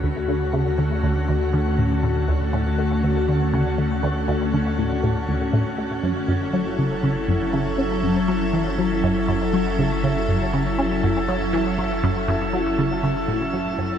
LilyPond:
<<
  \new Staff \with { instrumentName = "Ambient pad" } { \time 4/4 \key fis \phrygian \tempo 4 = 120 <d a cis' fis'>1~ | <d a cis' fis'>1~ | <d a cis' fis'>1 | <fis e' a'>1~ |
<fis e' a'>1~ | <fis e' a'>1~ | <fis e' a'>1 | }
  \new Staff \with { instrumentName = "Synth arpeggio sound" } { \clef bass \time 4/4 \key fis \phrygian d,16 r16 d16 r16 cis16 r16 d8 d,8 d,8 d16 r16 a,16 r16 | a,16 r16 d,8 a,8 a8 d,16 r16 d16 r16 cis16 r16 d8 | d,8 d,8 d16 r16 a,16 r16 a,16 r16 d,8 a,8 a8 | fis,8 fis,8 fis16 r16 cis16 r16 cis16 r16 fis,8 cis8 cis'8 |
fis,16 r16 fis16 r16 e16 r16 fis8 fis,8 fis,8 fis16 r16 cis16 r16 | cis16 r16 fis,8 cis8 cis'8 fis,16 r16 fis16 r16 e16 r16 fis8 | fis,8 fis,8 fis16 r16 cis16 r16 cis16 r16 a,16 r16 fis,16 r16 fis,16 r16 | }
  \new Staff \with { instrumentName = "Sub bass" } { \clef bass \time 4/4 \key fis \phrygian d,1~ | d,1~ | d,1 | fis,,1~ |
fis,,1~ | fis,,1~ | fis,,1 | }
>>